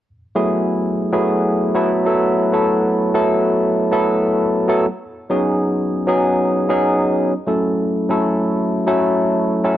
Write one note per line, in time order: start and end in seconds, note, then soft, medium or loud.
0.35 0.92 F#3 medium
0.35 0.92 A3 medium
0.35 0.92 B3 medium
0.35 0.92 E4 medium
0.35 0.92 G#4 loud
1.12 1.58 F#3 medium
1.12 1.58 A3 medium
1.12 1.58 B3 medium
1.12 1.58 E4 medium
1.12 1.58 G#4 medium
1.74 2.04 F#3 medium
1.74 2.05 A3 medium
1.74 2.05 B3 medium
1.74 2.05 E4 medium
1.74 2.05 A4 loud
2.05 2.43 F#3 medium
2.05 2.43 A3 medium
2.05 2.43 B3 medium
2.05 2.43 E4 medium
2.05 2.43 A4 medium
2.53 2.97 F#3 medium
2.53 2.98 A3 medium
2.53 2.98 B3 medium
2.53 2.98 E4 medium
2.53 2.98 A4 medium
3.14 3.70 F#3 medium
3.14 3.70 A3 medium
3.14 3.70 B3 medium
3.14 3.71 E4 medium
3.14 3.71 A4 loud
3.91 4.48 F#3 medium
3.91 4.48 A3 medium
3.91 4.48 B3 medium
3.91 4.48 E4 medium
3.91 4.48 A4 loud
4.68 4.84 F#3 medium
4.68 4.84 A3 medium
4.68 4.84 B3 medium
4.68 4.84 E4 medium
4.68 4.85 A4 loud
5.30 5.86 F#3 medium
5.30 5.87 B3 medium
5.30 5.87 C#4 medium
5.30 5.87 D#4 medium
5.30 5.87 G#4 loud
6.07 6.53 F#3 medium
6.07 6.53 B3 medium
6.07 6.53 C#4 medium
6.07 6.53 D#4 medium
6.07 6.53 G#4 loud
6.68 7.26 F#3 medium
6.68 7.26 B3 medium
6.68 7.26 C#4 medium
6.68 7.26 D#4 medium
6.68 7.26 G#4 loud
7.46 7.92 F#3 medium
7.46 7.92 A3 medium
7.46 7.92 C#4 medium
7.46 7.92 E4 medium
7.46 7.93 A4 medium
8.09 8.66 F#3 medium
8.09 8.66 A3 medium
8.09 8.66 C#4 medium
8.09 8.66 E4 medium
8.09 8.66 A4 medium
8.86 9.43 F#3 medium
8.86 9.43 A3 medium
8.86 9.43 C#4 medium
8.86 9.43 E4 medium
8.86 9.43 A4 loud
9.64 9.77 F#3 medium
9.64 9.77 A3 medium
9.64 9.77 C#4 medium
9.64 9.77 E4 medium
9.64 9.77 A4 medium